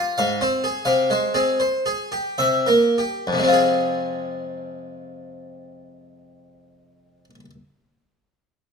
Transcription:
harpsichord
Already playing: F4
0.18 G#2 F5
0.41 C4 C5
0.64 G#4
0.85 C3 F5
1.10 G#3 C5
1.34 C4 G#4
1.60 C5
1.86 G#4
2.12 G4
2.38 C3 E5
2.66 A#3 A#4
2.98 G4
3.27 F2
3.33 C3
3.37 G#3
3.42 C4
3.48 F4
3.53 G#4

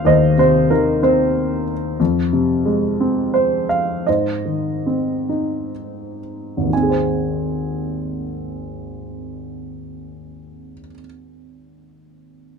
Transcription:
grand piano
Already playing: D#2 C3 D#3 C4 C5 F5
0.05 D#2 C5 D#5
0.38 C3 C5
0.70 D#3 A#4
1.03 C4 C5
2.00 F2
2.33 C3
2.65 G#3
3.00 C4
3.34 C5
3.69 F5
4.07 G#2 C5 D#5
4.45 D#3
4.86 C4
5.29 D#4
6.57 G#1
6.63 D#2
6.70 D#3 G#5
6.76 C4
6.83 G#4
6.90 C5

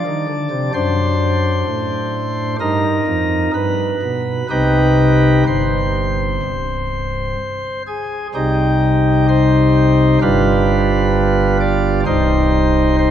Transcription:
pipe organ
Already playing: D4 D5
0.07 D#3
0.29 D3
0.51 C3
0.74 F#2 D4 C5
1.66 A2
2.60 G2 D#4 A#4
3.07 F2
3.54 G2 B4
4.02 B2
4.50 C2 C3 D#4 G4 B4
5.47 G1 G2 C5
6.43 C1 C2
7.87 G#4
8.34 C2 C3 G3 D#4 G4
9.28 C5
10.21 G1 G2 G3 D4 F4 B4
11.60 D5
12.06 C1 C2 G3 D#4 C5
12.98 C5

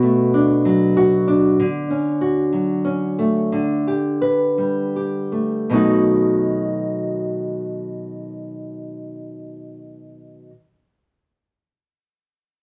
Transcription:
nylon-string guitar
Already playing: B2 F#4
0.03 A3
0.34 D4
0.65 F#3
0.97 F#4
1.28 D4
1.60 D3
1.90 C#4
2.21 F#4
2.53 F#3
2.85 C#4
3.19 A3
3.52 D3
3.87 G4
4.22 B4
4.58 G3
4.96 G4
5.32 A3
5.70 B2 D#3 F#3 A3
5.74 D#4 F#4

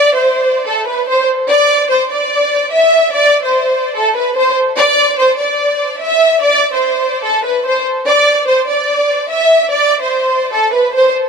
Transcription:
violin section
Already playing: D5
0.15 C5
0.67 A4
0.87 B4
1.08 C5
1.49 D5
1.90 C5
2.11 D5
2.72 E5
3.13 D5
3.44 C5
3.96 A4
4.16 B4
4.37 C5
4.78 D5
5.19 C5
5.39 D5
6.01 E5
6.42 D5
6.73 C5
7.24 A4
7.45 B4
7.65 C5
8.06 D5
8.47 C5
8.68 D5
9.30 E5
9.71 D5
10.01 C5
10.53 A4
10.73 B4
10.94 C5

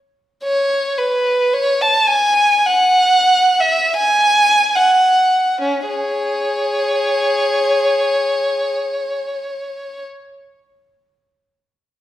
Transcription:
violin
0.44 C#5
0.98 B4
1.53 C#5
1.81 A5
2.07 G#5
2.66 F#5
3.60 E5
3.93 G#5
4.76 F#5
5.61 C#4
5.87 G#4 C#5

